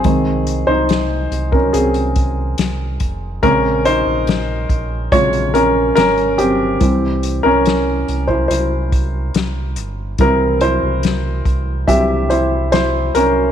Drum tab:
HH |x-x-x-x-xxx-x-x-|x-x-x-x-xxx-xxx-|x-x-x-x-x-x-x-x-|x-x-x-x-x-x-x-x-|
SD |----o-------o---|----o-------o---|----o-------o---|----o-------o---|
BD |o------o--o---o-|o-----o-o-------|o------o--o-----|o-----o-o-------|